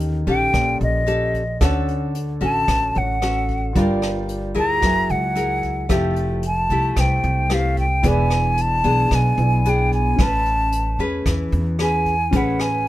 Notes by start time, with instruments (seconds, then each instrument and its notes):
Already playing: upright bass D#2, nylon-string guitar D#3 C#4 G4 A4, grand piano D#4 A4 C#5 G5
0.00 closed hi-hat
0.27 upright bass A#1, nylon-string guitar C#4 G4 A4, flute G5, kick, closed hi-hat
0.53 upright bass A#1, nylon-string guitar A#2, kick, cross-stick, closed hi-hat
0.81 upright bass A#1, flute D#5, closed hi-hat
1.07 nylon-string guitar C#4 G4 A4, closed hi-hat
1.34 kick, closed hi-hat
1.61 upright bass D2, nylon-string guitar D3 C#4 F#4 A4, grand piano A4 C#5 F#5, kick, cross-stick, closed hi-hat
1.88 closed hi-hat
2.15 closed hi-hat
2.41 upright bass A1, nylon-string guitar C#4 F#4 A4, flute A5, kick, closed hi-hat
2.68 upright bass A1, nylon-string guitar A2, kick, cross-stick, closed hi-hat
2.95 upright bass A1, grand piano A4 C#5 F#5, flute F#5, closed hi-hat
3.22 nylon-string guitar C#4 F#4 A4, cross-stick, closed hi-hat
3.49 kick, closed hi-hat
3.73 upright bass G1, nylon-string guitar G3 D4 F4 A#4, grand piano F4 A#4 D5, kick, closed hi-hat
3.79 grand piano G5
4.02 cross-stick, closed hi-hat
4.29 closed hi-hat
4.55 upright bass D2, nylon-string guitar E4 G#4 A#4, flute A#5, kick, closed hi-hat
4.80 upright bass F#1, nylon-string guitar F#3, grand piano F#4 A#4, kick, cross-stick, closed hi-hat
4.85 grand piano E5 G#5
5.09 upright bass C#2, flute F#5, closed hi-hat
5.35 nylon-string guitar E4 G#4 A#4, closed hi-hat
5.63 kick, closed hi-hat
5.89 upright bass F1, nylon-string guitar F3 A3 E4 G4, grand piano A4 E5 G5, kick, cross-stick, closed hi-hat
6.16 closed hi-hat
6.43 closed hi-hat
6.47 flute A5
6.70 upright bass C2, nylon-string guitar A3 E4 G4, kick, closed hi-hat
6.96 upright bass C2, nylon-string guitar C3, flute G5, kick, cross-stick, closed hi-hat
7.23 upright bass C2, closed hi-hat
7.50 nylon-string guitar A3 E4 G4, flute F5, cross-stick, closed hi-hat
7.77 flute G5, kick, closed hi-hat
8.02 upright bass E1, nylon-string guitar E3 B3 D4 G#4, grand piano E4 B4 D5, kick, closed hi-hat
8.08 flute G#5, grand piano B5
8.30 cross-stick, closed hi-hat
8.57 flute A5, closed hi-hat
8.84 upright bass B1, nylon-string guitar B3 D4 G#4, kick, closed hi-hat
9.11 upright bass B1, nylon-string guitar B2, kick, cross-stick, closed hi-hat
9.15 flute G#5
9.38 upright bass B1, grand piano E4 B4 D5 G#5, closed hi-hat
9.65 nylon-string guitar B3 D4 G#4, flute G5, closed hi-hat
9.92 flute G#5, kick, closed hi-hat
10.16 upright bass A1, nylon-string guitar A3 C#4, grand piano C#4, kick, cross-stick, closed hi-hat
10.20 grand piano B4 B5, nylon-string guitar B4, flute A5
10.45 closed hi-hat
10.72 closed hi-hat
10.99 upright bass E2, nylon-string guitar C#4 G#4 B4, kick, closed hi-hat
11.26 upright bass E2, nylon-string guitar E3, kick, cross-stick, closed hi-hat
11.52 upright bass E2, closed hi-hat
11.79 nylon-string guitar C#4 G#4 B4, flute G#5, cross-stick, closed hi-hat
12.06 kick, closed hi-hat
12.31 upright bass A1, nylon-string guitar A3 C#4 G#4 B4, grand piano C#4 B4, kick, closed hi-hat
12.37 flute F#5, grand piano B5
12.59 flute G#5, cross-stick, closed hi-hat